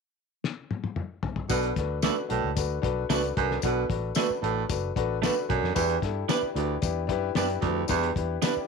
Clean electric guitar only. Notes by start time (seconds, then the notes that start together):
2.03 A3 D4 F#4 B4
3.10 A3 D4 F#4 B4
4.16 A3 D4 F#4 B4
5.22 A3 D4 F#4 B4
6.29 B3 D4 G4 B4
7.36 B3 D4 G4 B4
8.42 B3 D4 G4 B4